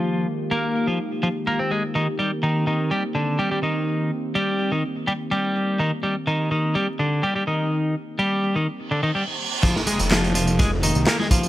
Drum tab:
CC |----------------|----------------|----------------|----------------|
HH |----------------|----------------|----------------|----------------|
TB |----------------|----------------|----------------|----------------|
CP |----------------|----------------|----------------|----------------|
SD |----------------|----------------|----------------|----------------|
BD |----------------|----------------|----------------|----------------|

CC |----------------|x---------------|
HH |----------------|x-xxxxx-x-x-x-x-|
TB |----------------|x-xxx-xxx-xxx-xx|
CP |----------------|----x-------x---|
SD |----------------|-o--o-------oo--|
BD |----------------|o-------o-----o-|